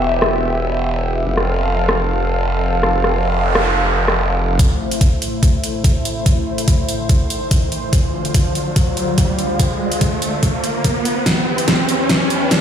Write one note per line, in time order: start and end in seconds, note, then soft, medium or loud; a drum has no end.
0.00 1.24 E1 medium
0.00 1.23 E3 medium
0.00 1.23 B3 medium
0.00 1.23 G4 medium
0.00 1.23 E5 medium
0.22 cross-stick medium
1.26 4.58 F1 medium
1.26 4.56 F3 medium
1.26 4.56 C4 medium
1.26 4.56 A4 medium
1.26 4.56 F5 medium
1.37 cross-stick medium
1.89 cross-stick medium
2.83 cross-stick medium
2.93 noise sweep medium
3.04 cross-stick soft
3.55 cross-stick medium
4.08 cross-stick medium
4.59 7.89 A2 medium
4.59 7.89 A3 medium
4.59 7.89 E4 medium
4.59 11.22 C5 medium
4.59 kick medium
4.59 closed hi-hat medium
4.59 riser medium
4.91 closed hi-hat medium
5.01 kick medium
5.01 closed hi-hat medium
5.22 closed hi-hat medium
5.43 kick medium
5.43 closed hi-hat medium
5.64 closed hi-hat medium
5.84 kick medium
5.84 closed hi-hat medium
6.05 closed hi-hat medium
6.26 kick medium
6.26 closed hi-hat medium
6.58 closed hi-hat medium
6.68 kick medium
6.68 closed hi-hat medium
6.89 closed hi-hat medium
7.09 kick medium
7.09 closed hi-hat medium
7.30 closed hi-hat soft
7.51 kick medium
7.51 closed hi-hat medium
7.72 closed hi-hat medium
7.93 11.23 D2 medium
7.93 11.23 D3 medium
7.93 11.23 F4 medium
7.93 kick medium
7.93 closed hi-hat medium
8.25 closed hi-hat soft
8.34 kick medium
8.34 closed hi-hat medium
8.55 closed hi-hat medium
8.76 kick loud
8.76 closed hi-hat medium
8.97 closed hi-hat soft
9.18 kick medium
9.18 closed hi-hat medium
9.39 closed hi-hat soft
9.59 kick medium
9.59 closed hi-hat medium
9.92 closed hi-hat soft
10.01 kick loud
10.01 closed hi-hat medium
10.22 closed hi-hat soft
10.43 kick loud
10.43 closed hi-hat medium
10.64 closed hi-hat soft
10.84 kick medium
10.84 closed hi-hat medium
11.05 closed hi-hat soft
11.26 12.61 E2 medium
11.26 12.61 E3 medium
11.26 12.61 G4 medium
11.26 12.61 B4 medium
11.26 kick loud
11.26 snare soft
11.26 closed hi-hat medium
11.58 closed hi-hat soft
11.68 kick loud
11.68 snare medium
11.68 closed hi-hat medium
11.89 closed hi-hat medium
12.09 kick loud
12.09 snare medium
12.09 closed hi-hat medium
12.30 closed hi-hat soft
12.51 kick medium
12.51 snare medium
12.51 closed hi-hat medium